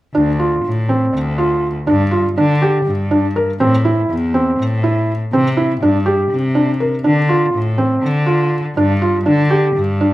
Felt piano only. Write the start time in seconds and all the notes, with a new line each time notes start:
0.15 D4
0.39 F4
0.89 C4
1.38 F4
1.87 D4
2.11 F4
2.38 D4
2.62 G4
3.11 D4
3.36 A#4
3.60 C4
3.85 E4
4.34 C4
4.83 E4
5.33 C4
5.57 E4
5.82 D4
6.06 G4
6.55 D4
6.80 A#4
7.04 D4
7.29 F4
7.78 C4
8.26 F4
8.77 D4
9.02 F4
9.26 D4
9.50 G4
10.01 D4